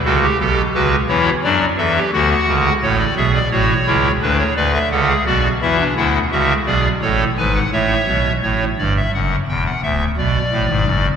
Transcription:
<<
  \new Staff \with { instrumentName = "Pipe organ" } { \time 4/4 \key a \mixolydian \tempo 4 = 86 << { a'16 g'16 a'8 b'8 cis''8 d''8 e''8 fis''4 | cis''16 d''16 e''16 d''16 cis''4 b'16 cis''16 d''16 e''16 fis''8 d''8 | e''8 fis''8 e''8 d''8 cis''8 gis''16 fis''16 e''4 | cis''8 d''16 e''16 fis''8 g''16 fis''16 e''8 d''4. | } \\ { fis'8 g'8 fis'8 e'8 d'8 a'16 g'16 fis'4 | a'8 gis'8 fis'8 e'8 d'8 b'8 a'16 gis'16 fis'8 | e'16 d'16 e'8 fis'8 gis'8 a'8 b'8 cis''4 | r1 | } >> }
  \new Staff \with { instrumentName = "Pipe organ" } { \clef bass \time 4/4 \key a \mixolydian <cis, cis>8 <b,, b,>8 <cis, cis>8 <e, e>8 <fis, fis>8 <e, e>8 <d, d>8 <cis, cis>8 | <a,, a,>8 <b,, b,>8 <a,, a,>8 <cis, cis>8 <d, d>8 <d, d>8 <cis, cis>8 <b,, b,>8 | <e, e>8 <d, d>8 <cis, cis>8 <b,, b,>8 <a,, a,>8 <gis,, gis,>8 <a,, a,>8 <b,, b,>8 | <a,, a,>8 <g,, g,>8 <fis,, fis,>8 <e,, e,>8 <d,, d,>8 <b,, b,>8 <a,, a,>16 <gis,, gis,>16 <fis,, fis,>8 | }
>>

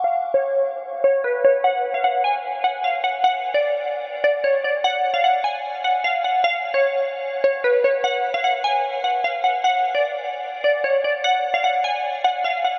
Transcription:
\new Staff \with { instrumentName = "Synth pluck" } { \time 4/4 \key cis \phrygian \tempo 4 = 150 eis''8. cis''4.~ cis''16 cis''8 b'8 cis''8 | fis''8. eis''16 fis''8 gis''4 fis''8 eis''8 fis''8 | fis''8. d''4.~ d''16 d''8 cis''8 d''8 | fis''8. eis''16 fis''8 gis''4 fis''8 eis''8 fis''8 |
eis''8. cis''4.~ cis''16 cis''8 b'8 cis''8 | fis''8. eis''16 fis''8 gis''4 fis''8 eis''8 fis''8 | fis''8. d''4.~ d''16 d''8 cis''8 d''8 | fis''8. eis''16 fis''8 gis''4 fis''8 eis''8 fis''8 | }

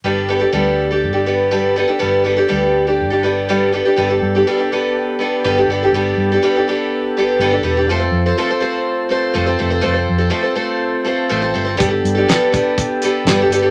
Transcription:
<<
  \new Staff \with { instrumentName = "Tonewheel organ" } { \time 4/4 \key g \mixolydian \tempo 4 = 123 r1 | r1 | <b g' a'>1~ | <b g' a'>1 |
<c' f' a'>1~ | <c' f' a'>1 | <b g' a'>1 | }
  \new Staff \with { instrumentName = "Twelve-string acoustic guitar" } { \time 4/4 \key g \mixolydian <g b d' g' a'>8 <b d' g' a'>16 <d' g' a'>16 <g b d' g' a'>8. <d' g' a'>8 <d' g' a'>16 <b d' g' a'>8 <g b d' g' a'>8 <b d' g' a'>16 <d' g' a'>16 | <g b d' g' a'>8 <b d' g' a'>16 <d' g' a'>16 <g b d' g' a'>8. <d' g' a'>8 <d' g' a'>16 <b d' g' a'>8 <g b d' g' a'>8 <b d' g' a'>16 <d' g' a'>16 | <g b d' g' a'>16 <d' g' a'>8 <d' g' a'>16 <g b d' g' a'>16 <d' g' a'>16 <b d' g' a'>4 <b d' g' a'>8 <g b d' g' a'>16 <d' g' a'>16 <b d' g' a'>16 <d' g' a'>16 | <g b d' g' a'>8. <d' g' a'>16 <g b d' g' a'>16 <d' g' a'>16 <b d' g' a'>4 <b d' g' a'>8 <g b d' g' a'>16 <d' g' a'>16 <b d' g' a'>16 <d' g' a'>16 |
<f a c' a' c''>16 <c' a' c''>8 <c' a' c''>16 <f a c' a' c''>16 <c' a' c''>16 <a c' a' c''>4 <a c' a' c''>8 <f a c' a' c''>16 <c' a' c''>16 <a c' a' c''>16 <c' a' c''>16 | <f a c' a' c''>16 <c' a' c''>8 <c' a' c''>16 <f a c' a' c''>16 <c' a' c''>16 <a c' a' c''>4 <a c' a' c''>8 <f a c' a' c''>16 <c' a' c''>16 <a c' a' c''>16 <c' a' c''>16 | <g b d' g' a'>16 <d' g' a'>8 <d' g' a'>16 <g b d' g' a'>8 <b d' g' a'>4 <b d' g' a'>8 <g b d' g' a'>16 <d' g' a'>16 <b d' g' a'>16 <d' g' a'>16 | }
  \new Staff \with { instrumentName = "Fingered electric bass" } { \clef bass \time 4/4 \key g \mixolydian g,,4 d,4 g,,2 | g,,4 d,4 g,,2 | g,,8 g,8 r2 g,,8 g,,8 | g,,8 g,8 r2 g,,8 e,,8 |
f,,8 f,8 r2 f,,8 f,,8 | f,,8 f,8 r2 a,,8 g,,8 | g,,8 g,8 r2 g,,8 g,,8 | }
  \new DrumStaff \with { instrumentName = "Drums" } \drummode { \time 4/4 r4 r4 r4 r4 | r4 r4 r4 r4 | r4 r4 r4 r4 | r4 r4 r4 r4 |
r4 r4 r4 r4 | r4 r4 r4 r4 | <hh bd>8 hh8 <hh sn>8 <hh bd>8 <hh bd>8 hh8 <hh sn>8 hh8 | }
>>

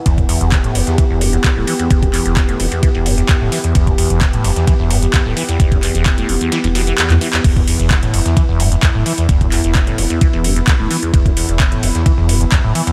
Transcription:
<<
  \new Staff \with { instrumentName = "Ambient pad" } { \time 4/4 \key e \minor \tempo 4 = 130 << { g'1~ | g'1~ | g'1~ | g'1 |
e'1~ | e'1~ | e'1 | } \\ { <e b>1~ | <e b>1~ | <e b>1~ | <e b>1~ |
<e b>1~ | <e b>1~ | <e b>1 | } >> }
  \new Staff \with { instrumentName = "Acid bass" } { \clef bass \time 4/4 \key e \minor e,16 g,16 e,16 e,16 e16 a,16 e,16 e,16 e16 e,16 g,16 e,16 e,16 a,16 e16 e,16 | r16 g,16 e,16 e,16 e16 a,16 e,16 e,16 e16 e,16 g,16 e,16 e,16 a,16 e16 e,16 | e,16 g,16 e,16 e,16 e16 a,16 e,16 e,16 e16 e,16 g,16 e,16 e,16 a,16 e16 e,16 | e,16 g,16 e,16 e,16 e16 a,16 e,16 e,16 e16 e,16 b,16 e16 e,16 d16 e16 e,16 |
e,16 g,16 e,16 e,16 e16 a,16 e,16 e,16 e16 e,16 g,16 e,16 e,16 a,16 e16 e,16 | r16 g,16 e,16 e,16 e16 a,16 e,16 e,16 e16 e,16 g,16 e,16 e,16 a,16 e16 e,16 | e,16 g,16 e,16 e,16 e16 a,16 e,16 e,16 e16 e,16 g,16 e,16 e,16 a,16 e16 e,16 | }
  \new Staff \with { instrumentName = "Sub bass" } { \clef bass \time 4/4 \key e \minor e,,8 r16 e,,8 r16 e,,16 r8 e,,8 r8 d,,16 r8 | e,,8 r16 e,,8 r16 e,,16 r8 e,,8 r8 d,,16 r8 | e,,8 r16 e,,8 r16 e,,16 r8 e,,8 r8 d,,16 r8 | e,,8 r16 e,,8 r16 e,,16 r8 e,,8 r8 e,16 r8 |
e,,8 r16 e,,8 r16 e,,16 r8 e,,8 r8 d,,16 r8 | e,,8 r16 e,,8 r16 e,,16 r8 e,,8 r8 d,,16 r8 | e,,8 r16 e,,8 r16 e,,16 r8 e,,8 r8 d,,16 r8 | }
  \new DrumStaff \with { instrumentName = "Drums" } \drummode { \time 4/4 <hh bd cymr>16 <hh bd>16 <hho cymr>16 hh16 <hc hh bd cymr sn>16 hh16 <hho cymr>16 <hh sn>16 <hh bd cymr>8 <hho cymr>16 hh16 <hc hh bd cymr sn>8 <hho cymr>16 <hh cymr>16 | <hh bd cymr>16 <hh bd cymr>16 <hc hho cymr>16 hh16 <hc hh bd cymr sn>16 hh16 <hho cymr>16 <hh cymr>16 <hh bd cymr>16 cymr16 <hho cymr>16 hh16 <hc hh bd cymr sn>8 hho16 hh16 | <hh bd cymr>16 <hh bd>16 <hho cymr>16 hh16 <hc hh bd cymr sn>16 hh16 <hho cymr>16 <hh sn>16 <hh bd cymr>8 <hho cymr>16 hh16 <hc hh bd cymr sn>8 <hho cymr>16 <hh cymr>16 | <hh bd cymr>16 <hh bd cymr>16 <hc hho cymr>16 hh16 <hc hh bd cymr sn>16 hh16 hho16 hh16 <hh cymr sn>16 <hh cymr>16 <hho cymr sn>16 hh16 <hc hh cymr sn>16 <hc hh>16 <hho cymr>16 <hc cymr sn>16 |
<cymc hh bd cymr>16 <hh bd>16 <hho cymr>16 hh16 <hc hh bd cymr sn>16 hh16 <hho cymr>16 <hh sn>16 <hh bd cymr>8 <hho cymr>16 hh16 <hc hh bd cymr sn>8 <hho cymr>16 <hh cymr>16 | <hh bd cymr>16 <hh bd cymr>16 <hc hho cymr>16 hh16 <hc hh bd cymr sn>16 hh16 <hho cymr>16 <hh cymr>16 <hh bd cymr>16 cymr16 <hho cymr>16 hh16 <hc hh bd cymr sn>8 hho16 hh16 | <hh bd cymr>16 <hh bd>16 <hho cymr>16 hh16 <hc hh bd cymr sn>16 hh16 <hho cymr>16 <hh sn>16 <hh bd cymr>8 <hho cymr>16 hh16 <hc hh bd cymr sn>8 <hho cymr>16 <hh cymr>16 | }
>>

